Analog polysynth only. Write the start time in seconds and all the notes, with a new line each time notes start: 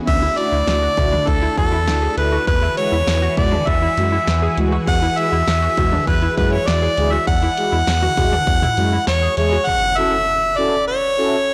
0.37 D4 E4 F#4
0.97 D4 E4 F#4
1.57 D4 E4 F#4
2.17 D4 E4 A4
2.77 G#3 E4 F#4
3.37 G#3 E4 F#4
3.97 G#3 E4 F#4
4.57 G#3 E4 F#4
5.17 G#3 E4 F#4
5.77 G#3 E4 F#4
6.37 G#3 E4 F#4
6.97 G#3 E4 G#4
7.57 G#3 E4 F#4
8.17 G#3 E4 F#4
8.77 G#3 E4 F#4
9.37 G#3 E4 G#4
9.97 C#4 E4 F#4 A4
10.57 C#4 E4 F#4 A4
11.17 C#4 E4 F#4 A4